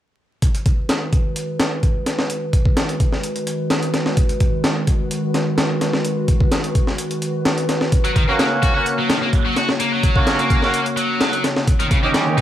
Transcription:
0.42 7.88 D#3 medium
0.42 7.88 G#3 medium
0.42 11.63 F#4 medium
0.42 7.88 B4 medium
0.42 kick medium
0.42 closed hi-hat medium
0.55 closed hi-hat soft
0.66 kick medium
0.66 closed hi-hat medium
0.89 snare loud
0.89 closed hi-hat medium
1.13 kick medium
1.13 closed hi-hat medium
1.36 closed hi-hat medium
1.60 snare loud
1.60 closed hi-hat medium
1.83 kick medium
1.83 closed hi-hat medium
2.06 snare soft
2.06 closed hi-hat medium
2.19 snare medium
2.30 closed hi-hat medium
2.53 kick medium
2.53 closed hi-hat medium
2.65 kick medium
2.77 snare loud
2.77 closed hi-hat medium
2.89 closed hi-hat soft
3.00 kick medium
3.00 closed hi-hat medium
3.12 snare soft
3.23 closed hi-hat medium
3.36 closed hi-hat soft
3.47 closed hi-hat medium
3.70 snare loud
3.70 closed hi-hat medium
3.83 closed hi-hat soft
3.94 snare medium
3.94 closed hi-hat medium
4.06 snare soft
4.17 kick loud
4.17 closed hi-hat medium
4.29 closed hi-hat soft
4.40 kick medium
4.40 closed hi-hat medium
4.64 snare loud
4.64 closed hi-hat medium
4.87 kick medium
4.87 closed hi-hat medium
5.11 closed hi-hat medium
5.34 snare soft
5.34 closed hi-hat medium
5.58 snare loud
5.58 closed hi-hat medium
5.81 snare soft
5.81 closed hi-hat medium
5.93 snare soft
6.05 closed hi-hat medium
6.28 kick medium
6.28 closed hi-hat medium
6.40 kick medium
6.52 snare loud
6.52 closed hi-hat medium
6.64 closed hi-hat soft
6.75 kick medium
6.75 closed hi-hat medium
6.87 snare soft
6.98 closed hi-hat medium
7.11 closed hi-hat soft
7.22 closed hi-hat medium
7.45 snare loud
7.45 closed hi-hat medium
7.58 closed hi-hat soft
7.69 snare medium
7.69 closed hi-hat medium
7.81 snare soft
7.92 11.64 C#3 medium
7.92 11.64 A#3 medium
7.92 12.41 C#5 medium
7.92 kick loud
7.92 closed hi-hat medium
8.05 8.10 F#3 medium
8.05 closed hi-hat soft
8.16 8.22 D#3 medium
8.16 kick medium
8.16 closed hi-hat medium
8.28 8.72 A#3 medium
8.28 8.34 A#3 medium
8.28 8.72 C#4 medium
8.28 8.72 F#4 loud
8.39 8.46 A#3 medium
8.39 snare loud
8.39 closed hi-hat medium
8.63 8.73 F#4 medium
8.63 kick medium
8.63 closed hi-hat medium
8.75 8.96 A#3 medium
8.75 8.96 C#4 medium
8.75 8.85 F#4 medium
8.75 8.96 F#4 medium
8.86 closed hi-hat medium
8.98 9.08 F#3 medium
9.09 9.16 D#3 medium
9.09 snare loud
9.09 closed hi-hat medium
9.22 9.28 A#3 medium
9.33 kick medium
9.33 closed hi-hat medium
9.45 9.55 F#3 medium
9.56 9.67 F#4 medium
9.56 snare soft
9.56 closed hi-hat medium
9.69 snare medium
9.80 9.91 A#3 medium
9.80 closed hi-hat medium
9.92 10.38 F#3 medium
10.03 kick medium
10.03 closed hi-hat medium
10.16 10.59 A#3 medium
10.16 10.59 C#4 medium
10.16 10.59 F#4 loud
10.16 kick medium
10.27 snare loud
10.27 closed hi-hat medium
10.39 10.85 A#3 medium
10.39 closed hi-hat soft
10.50 kick medium
10.50 closed hi-hat medium
10.62 10.83 A#3 medium
10.62 10.83 C#4 medium
10.62 10.83 F#4 medium
10.62 snare soft
10.74 closed hi-hat medium
10.86 closed hi-hat soft
10.97 11.43 F#3 loud
10.97 closed hi-hat medium
11.21 snare loud
11.21 closed hi-hat medium
11.33 closed hi-hat soft
11.44 snare medium
11.44 closed hi-hat medium
11.56 snare soft
11.67 12.41 D#3 medium
11.67 12.41 A#3 medium
11.67 12.41 G4 medium
11.67 kick loud
11.67 closed hi-hat medium
11.67 riser medium
11.80 11.86 D#3 medium
11.80 closed hi-hat soft
11.91 11.97 C#3 medium
11.91 kick medium
11.91 closed hi-hat medium
12.03 12.09 A#3 medium
12.03 12.41 C#4 medium
12.03 12.41 D#4 medium
12.03 12.41 G4 medium
12.14 12.21 G3 medium
12.14 snare loud
12.14 closed hi-hat medium
12.38 12.41 D#4 medium
12.38 kick medium
12.38 closed hi-hat medium

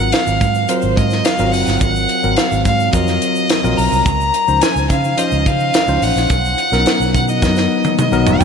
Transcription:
0.00 0.11 G#1 loud
0.00 0.48 F#3 medium
0.00 0.49 C4 medium
0.00 0.49 F4 medium
0.00 0.49 A#4 medium
0.00 0.14 F#5 loud
0.12 0.70 F5 medium
0.12 snare loud
0.12 closed hi-hat medium
0.12 shaker medium
0.27 0.39 G#1 medium
0.27 shaker medium
0.41 0.65 G#2 medium
0.41 kick loud
0.41 closed hi-hat medium
0.41 shaker soft
0.55 shaker soft
0.68 1.19 F#3 medium
0.68 1.19 C4 medium
0.68 1.19 F4 medium
0.68 1.19 A#4 medium
0.68 0.98 C5 medium
0.68 closed hi-hat medium
0.68 shaker medium
0.82 0.95 G#1 medium
0.82 shaker soft
0.97 1.21 G#2 medium
0.97 1.26 D#5 medium
0.97 kick medium
0.97 closed hi-hat medium
1.10 snare soft
1.10 shaker soft
1.25 1.53 F5 medium
1.25 snare loud
1.25 closed hi-hat loud
1.25 shaker medium
1.38 1.53 G#1 medium
1.38 1.99 F#3 medium
1.38 1.99 C4 medium
1.38 1.99 F4 medium
1.38 1.99 A#4 medium
1.38 shaker medium
1.52 1.65 F#1 medium
1.52 1.81 F#5 medium
1.52 open hi-hat medium
1.52 shaker soft
1.67 1.79 G1 medium
1.67 snare soft
1.67 shaker medium
1.81 2.05 G#1 medium
1.81 2.38 F#5 loud
1.81 kick loud
1.81 closed hi-hat medium
1.81 shaker medium
1.95 shaker soft
2.09 closed hi-hat medium
2.23 2.35 G#1 loud
2.23 2.73 F#3 medium
2.23 2.73 C4 medium
2.23 2.73 F4 medium
2.23 2.73 A#4 medium
2.23 shaker soft
2.36 2.65 F5 medium
2.36 snare loud
2.36 closed hi-hat medium
2.36 shaker medium
2.52 2.63 G#1 medium
2.52 shaker medium
2.65 2.89 G#2 medium
2.65 2.92 F5 medium
2.65 kick medium
2.65 closed hi-hat medium
2.65 shaker soft
2.80 shaker soft
2.93 3.17 F2 loud
2.93 3.43 F#3 medium
2.93 3.43 C4 medium
2.93 3.43 F4 medium
2.93 3.44 A#4 medium
2.93 3.79 D#5 loud
2.93 kick loud
2.93 closed hi-hat medium
2.93 shaker medium
3.07 snare soft
3.07 shaker soft
3.22 closed hi-hat medium
3.35 shaker soft
3.50 snare loud
3.50 closed hi-hat loud
3.50 shaker medium
3.63 3.76 A#1 medium
3.63 4.06 F#3 medium
3.63 4.06 C4 medium
3.63 4.06 F4 medium
3.63 4.06 A#4 medium
3.63 shaker soft
3.77 3.90 B1 medium
3.77 4.05 A#5 loud
3.77 open hi-hat medium
3.77 shaker soft
3.92 4.04 C2 medium
3.92 shaker medium
4.05 4.29 C#2 medium
4.05 4.63 A#5 loud
4.05 kick loud
4.05 closed hi-hat medium
4.05 shaker medium
4.21 shaker medium
4.34 closed hi-hat medium
4.47 4.60 C#2 loud
4.47 4.97 F3 medium
4.47 4.98 C#4 medium
4.47 4.98 D#4 medium
4.47 4.98 C5 medium
4.47 shaker soft
4.62 4.90 G#5 loud
4.62 snare loud
4.62 closed hi-hat medium
4.62 shaker medium
4.76 4.88 C#2 medium
4.76 shaker medium
4.90 5.13 C#3 medium
4.90 5.19 F5 medium
4.90 kick medium
4.90 closed hi-hat medium
4.90 shaker soft
5.04 shaker soft
5.17 5.67 F3 medium
5.17 5.68 C#4 medium
5.17 5.68 D#4 medium
5.17 5.68 C5 medium
5.17 5.47 D#5 medium
5.17 closed hi-hat medium
5.17 shaker medium
5.31 5.44 C#2 medium
5.31 shaker soft
5.46 5.70 C#3 medium
5.46 6.04 F5 loud
5.46 kick medium
5.46 closed hi-hat medium
5.59 shaker soft
5.74 snare loud
5.74 closed hi-hat loud
5.74 shaker medium
5.87 6.00 C#2 medium
5.87 6.30 F3 medium
5.87 6.30 C#4 medium
5.87 6.30 D#4 medium
5.87 6.31 C5 medium
5.87 shaker soft
6.02 6.14 A1 medium
6.02 7.14 F#5 loud
6.02 open hi-hat medium
6.02 shaker soft
6.16 6.28 A#1 medium
6.16 snare soft
6.16 shaker medium
6.30 6.54 B1 medium
6.30 kick loud
6.30 closed hi-hat medium
6.30 shaker medium
6.45 shaker soft
6.58 closed hi-hat medium
6.72 6.84 B1 medium
6.72 7.22 F#3 medium
6.72 7.22 B3 medium
6.72 6.79 C#4 medium
6.72 7.22 A#4 medium
6.72 snare soft
6.72 shaker soft
6.79 7.25 D#4 medium
6.86 snare loud
6.86 closed hi-hat medium
6.86 shaker medium
7.00 7.12 B1 medium
7.00 shaker medium
7.14 7.44 B2 medium
7.14 7.27 F#5 medium
7.14 kick medium
7.14 closed hi-hat medium
7.14 shaker soft
7.28 7.95 D#5 medium
7.28 shaker soft
7.42 7.66 F#2 medium
7.42 7.92 F#3 medium
7.42 7.92 B3 medium
7.42 7.92 D#4 medium
7.42 7.92 A#4 medium
7.42 kick loud
7.42 snare medium
7.42 shaker medium
7.56 snare soft
7.56 shaker soft
7.84 high tom medium
7.84 shaker soft
7.99 8.43 D#5 medium
7.99 mid tom medium
7.99 shaker medium
8.12 8.24 B1 medium
8.12 8.44 F#3 medium
8.12 8.44 B3 medium
8.12 8.44 D#4 medium
8.12 8.44 A#4 loud
8.12 shaker medium
8.26 8.38 E1 medium
8.26 floor tom loud
8.26 shaker soft
8.41 8.44 F1 medium
8.41 floor tom medium
8.41 shaker medium

